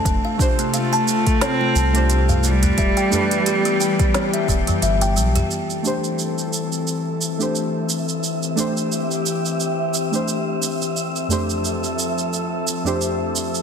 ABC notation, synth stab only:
X:1
M:4/4
L:1/16
Q:"Swing 16ths" 1/4=88
K:Am
V:1 name="Synth stab"
z2 [A,DGc]8- [A,DGc] [A,DGc]4- [A,DGc] | z2 [A,DGB]8- [A,DGB] z4 z | z2 [A,DGc]8- [A,DGc] [A,DGc]4- [A,DGc]- | [A,DGc]2 [A,DGc]8- [A,DGc] [A,DGc]4- [A,DGc] |
z2 [F,,A,DGc]8- [F,,A,DGc] [F,,A,DGc]4- [F,,A,DGc] |]